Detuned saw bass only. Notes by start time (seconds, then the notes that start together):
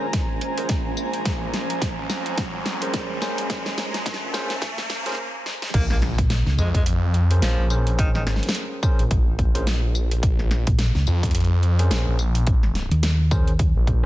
0.02 A#1
0.58 A#1
1.26 A#1
1.70 A#1
1.98 C#2
2.10 F2
2.38 F2
2.94 A#1
3.10 A#1
3.95 A#1
4.22 A#1
5.74 A#1
6.58 F2
6.86 F2
7.43 A#1
7.59 A#1
8.17 A1
8.99 A#1
9.55 A#1
10.23 A#1
11.07 F2
11.35 F2
11.91 A#1
12.08 A#1
13.76 A#1